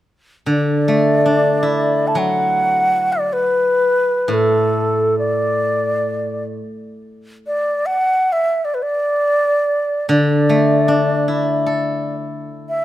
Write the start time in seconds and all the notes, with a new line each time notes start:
0.46 D3
0.51 D5
0.88 A3
1.26 D4
1.63 E4
2.07 A5
2.15 F#3
2.19 F#5
3.12 D5
3.33 B4
4.28 A2
4.34 A4
5.19 D5
7.47 D5
7.86 F#5
8.32 E5
8.65 D5
8.74 B4
8.82 D5
10.09 D3 D5
10.49 A3
10.88 D4
11.28 E4
11.66 A4
12.69 E5